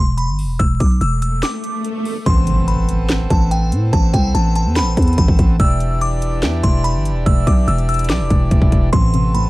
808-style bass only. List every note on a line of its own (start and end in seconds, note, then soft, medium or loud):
0.00 0.30 E1 loud
0.28 0.45 G1 loud
0.44 0.59 E1 loud
0.60 0.80 E1 loud
0.80 1.00 B1 loud
1.01 1.43 E1 loud
2.26 3.26 A1 loud
3.30 3.74 A1 loud
3.72 3.92 A2 loud
3.93 4.13 A1 loud
4.14 4.34 C2 loud
4.35 4.67 A1 loud
4.66 4.83 E2 loud
4.82 4.96 A1 loud
4.97 5.17 E2 loud
5.18 5.28 A1 loud
5.28 5.38 A1 loud
5.39 5.59 A1 loud
5.60 6.44 E1 loud
6.43 6.63 E2 loud
6.64 6.97 E1 loud
6.95 7.12 G1 loud
7.11 7.25 E1 loud
7.26 7.46 E1 loud
7.47 7.67 B1 loud
7.68 8.11 E1 loud
8.10 8.22 B1 loud
8.20 8.30 E1 loud
8.30 8.50 E1 loud
8.51 8.61 E1 loud
8.62 8.72 E1 loud
8.72 8.92 E1 loud
8.93 9.50 A1 loud